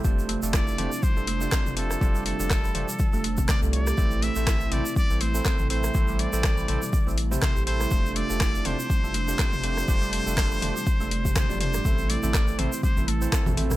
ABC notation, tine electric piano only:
X:1
M:4/4
L:1/16
Q:"Swing 16ths" 1/4=122
K:Flyd
V:1 name="Tine electric piano"
[A,DFGc]3 [A,DFGA]3 [A,DFGc] z2 [A,DFGA] z [A,DFGc]3 [A,DFGc]2 | [A,DFGc]3 [A,DFGA]3 [A,DFGc] z2 [A,DFGA] z3 [A,DFGd]3 | [A,CEAc]3 [A,CEAc]3 [A,CEAc] z2 [A,CEAc] z [A,CEAc]3 [A,CEAc]2 | [A,CEAc]3 [A,CEAc]3 [A,CEAc] z2 [A,CEAc] z [A,CEAc]3 [A,CEAc]2 |
[A,DFGc]3 [A,DFGA]3 [A,DFGc] z2 [A,DFGA] z [A,DFGc]3 [A,DFGc]2 | [A,DFGc]3 [A,DFGA]3 [A,DFGc] z2 [A,DFGA] z3 [A,DFGd]3 | [A,CEAc]3 [A,CEAc]3 [A,CEAc] z2 [A,CEAc] z [A,CEAc]3 [A,CEAc]2 |]